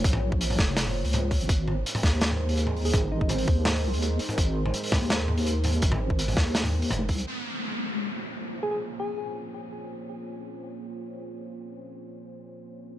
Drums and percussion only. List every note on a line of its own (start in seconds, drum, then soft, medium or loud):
0.04 kick loud
0.04 closed hi-hat medium
0.13 mid tom medium
0.32 kick medium
0.41 closed hi-hat medium
0.50 mid tom soft
0.50 open hi-hat medium
0.59 kick loud
0.59 snare medium
0.77 snare loud
0.77 closed hi-hat loud
0.87 mid tom soft
0.87 open hi-hat medium
1.05 open hi-hat medium
1.13 closed hi-hat medium
1.13 mid tom medium
1.31 kick medium
1.31 open hi-hat medium
1.41 closed hi-hat medium
1.49 kick loud
1.49 closed hi-hat medium
1.68 mid tom soft
1.86 closed hi-hat medium
1.95 mid tom medium
1.95 open hi-hat medium
2.03 kick loud
2.03 snare medium
2.21 snare loud
2.21 closed hi-hat medium
2.31 mid tom medium
2.49 open hi-hat medium
2.57 closed hi-hat medium
2.67 mid tom medium
2.77 open hi-hat soft
2.81 closed hi-hat medium
2.81 open hi-hat soft
2.86 open hi-hat medium
2.90 kick loud
2.90 mid tom medium
2.90 open hi-hat medium
2.94 closed hi-hat medium
3.21 kick medium
3.29 closed hi-hat medium
3.29 mid tom medium
3.38 open hi-hat medium
3.48 kick loud
3.65 snare loud
3.65 closed hi-hat medium
3.65 mid tom medium
3.76 open hi-hat medium
3.94 open hi-hat medium
4.02 closed hi-hat medium
4.19 open hi-hat medium
4.29 closed hi-hat soft
4.29 mid tom medium
4.38 kick loud
4.38 closed hi-hat medium
4.66 mid tom soft
4.74 closed hi-hat medium
4.84 open hi-hat medium
4.92 kick loud
4.92 snare medium
4.92 mid tom medium
5.10 snare loud
5.10 closed hi-hat medium
5.28 mid tom medium
5.38 open hi-hat medium
5.46 closed hi-hat medium
5.64 mid tom medium
5.64 open hi-hat medium
5.73 closed hi-hat medium
5.82 kick loud
5.82 closed hi-hat loud
5.92 mid tom medium
6.10 kick medium
6.19 closed hi-hat medium
6.28 mid tom medium
6.28 open hi-hat medium
6.37 kick loud
6.37 snare medium
6.55 snare loud
6.55 closed hi-hat medium
6.64 mid tom medium
6.64 open hi-hat medium
6.82 open hi-hat medium
6.90 closed hi-hat medium
6.90 mid tom medium
7.09 kick medium
7.09 open hi-hat medium
7.18 closed hi-hat medium